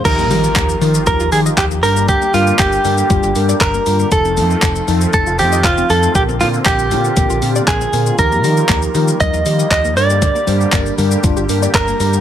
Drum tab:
CC |x---------------|----------------|----------------|----------------|
HH |x-o-x-o-x-o-x-o-|x-o-x-o-x-o-x-o-|x-o-x-o-x-o-x-o-|x-o-x-o-x-o-x-o-|
SH |xxxxxxxxxxxxxxxx|xxxxxxxxxxxxxxxx|xxxxxxxxxxxxxxxx|xxxxxxxxxxxxxxxx|
CP |----x-------x---|----x-------x---|----x-------x---|----x-------x---|
BD |o---o---o---o---|o---o---o---o---|o---o---o---o---|o---o---o---o---|

CC |----------------|----------------|
HH |x-o-x-o-x-o-x-o-|x-o-x-o-x-o-x-o-|
SH |xxxxxxxxxxxxxxxx|xxxxxxxxxxxxxxxx|
CP |----x-------x---|----x-------x---|
BD |o---o---o---o---|o---o---o---o---|